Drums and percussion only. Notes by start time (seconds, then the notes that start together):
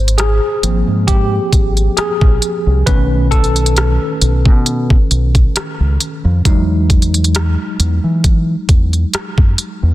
0.08 closed hi-hat
0.18 cross-stick, closed hi-hat
0.63 closed hi-hat
1.08 kick, closed hi-hat
1.53 kick, closed hi-hat
1.77 closed hi-hat
1.97 cross-stick, closed hi-hat
2.21 kick
2.42 closed hi-hat
2.87 kick, closed hi-hat
3.32 kick, closed hi-hat
3.44 closed hi-hat
3.56 closed hi-hat
3.66 closed hi-hat
3.76 cross-stick, closed hi-hat
4.22 closed hi-hat
4.46 kick
4.66 closed hi-hat
4.90 kick
5.11 closed hi-hat
5.35 kick, closed hi-hat
5.56 cross-stick, closed hi-hat
6.00 closed hi-hat
6.45 kick, closed hi-hat
6.90 kick, closed hi-hat
7.02 closed hi-hat
7.14 closed hi-hat
7.24 closed hi-hat
7.35 cross-stick, closed hi-hat
7.80 closed hi-hat
8.24 kick, closed hi-hat
8.69 kick, closed hi-hat
8.93 closed hi-hat
9.14 cross-stick, closed hi-hat
9.38 kick
9.58 closed hi-hat